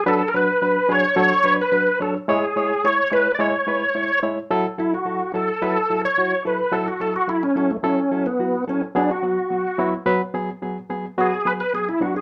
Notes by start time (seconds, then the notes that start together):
0.06 F#3 D4 A4 B4
0.28 A#4
0.34 F#3 D4 B4
0.62 F#3 D4 B4
0.89 F#3 D4 G#4 C#5
1.16 F#3 D4 A4
1.44 F#3 D4 B4
1.61 B4
1.72 F#3 D4 B4
2.00 F#3 D4 A4 C#5
2.28 G#3 E4 G#4 C#5
2.56 G#3 E4 C#5
2.84 G#3 E4 C#5
3.11 G#3 E4 B4 C#5
3.35 D5
3.39 G#3 E4 C#5
3.67 G#3 E4 B4
3.95 G#3 E4 C#5
4.23 G#3 E4 C#5
4.51 F#3 E4 A4
4.78 F#3 E4 A4
4.94 F#4
5.05 F#3 E4 A4
5.33 F#3 E4 A4
5.62 F#3 E4 A4 B4
5.90 F#3 E4 A4
6.05 C#5
6.18 F#3 E4 F#4
6.45 F#3 E4 A4 B4
6.72 F#3 E4 A4
6.88 F#4
7.00 F#3 E4 A4
7.16 F#4
7.28 F#3 E4 A4
7.43 C#4
7.56 F#3 C#4 E4 A4
7.71 A3
7.83 F#3 C#4 E4 A4
8.11 F#3 E4 A4
8.26 B3
8.39 F#3 E4 F#4
8.67 F#3 C#4 E4 A4
8.95 F#3 B3 D4 G#4
9.11 F#4
9.22 F#3 B3 F#4
9.50 F#3 B3 F#4
9.78 F#3 B3 E4
10.06 F#3 B3 B4
10.34 F#3 B3 G#4
10.62 F#3 B3 G#4
10.89 F#3 B3 G#4
11.18 F#3 B3 F#4 G#4
11.45 F#3 B3 G#4 B4
11.60 B4
11.73 F#3 B3 G#4
11.89 E4
12.01 F#3 B3 D4 F#4
12.16 G#4